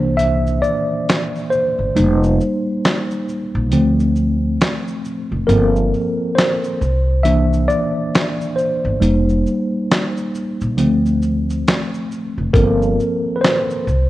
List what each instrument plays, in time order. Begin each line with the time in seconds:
Already playing: upright bass C2, tine electric piano E3 A#3 D4 C5
0.17 tine electric piano E5, closed hi-hat, shaker
0.47 shaker
0.62 tine electric piano D5, shaker
1.09 snare, closed hi-hat, shaker
1.35 shaker
1.51 tine electric piano C5, shaker
1.79 upright bass G1
1.95 upright bass F1, tine electric piano G3 A#3 D#4, closed hi-hat, shaker
2.23 shaker
2.40 shaker
2.85 snare, closed hi-hat, shaker
3.11 shaker
3.28 shaker
3.55 upright bass A#1
3.72 upright bass D2, tine electric piano F3 A3 C4, closed hi-hat, shaker
4.00 shaker
4.16 shaker
4.61 snare, closed hi-hat, shaker
4.88 shaker
5.05 shaker
5.32 upright bass F1
5.47 upright bass G1, tine electric piano F3 A#3 C4 A4 A#4, closed hi-hat, shaker
5.76 shaker
5.94 shaker
6.35 tine electric piano C5, snare, closed hi-hat, shaker
6.64 shaker
6.81 upright bass C2, shaker
7.23 tine electric piano E3 A#3 D4 E5, closed hi-hat, shaker
7.53 shaker
7.68 tine electric piano D5, shaker
8.15 snare, closed hi-hat, shaker
8.41 shaker
8.56 tine electric piano C5, shaker
8.85 upright bass G1
9.00 upright bass F1, tine electric piano G3 A#3 D#4, closed hi-hat, shaker
9.29 shaker
9.46 shaker
9.91 snare, closed hi-hat, shaker
10.17 shaker
10.35 shaker
10.61 upright bass A#1, shaker
10.77 upright bass D2, tine electric piano F3 A3 C4, closed hi-hat, shaker
11.06 shaker
11.22 shaker
11.50 shaker
11.68 snare, closed hi-hat, shaker
11.94 shaker
12.12 shaker
12.38 upright bass F1
12.53 upright bass G1, tine electric piano F3 A#3 C4 A4 A#4, kick, closed hi-hat, shaker
12.82 shaker
13.00 shaker
13.36 tine electric piano B4
13.41 tine electric piano C5, snare, closed hi-hat, shaker
13.70 shaker
13.87 upright bass C2, shaker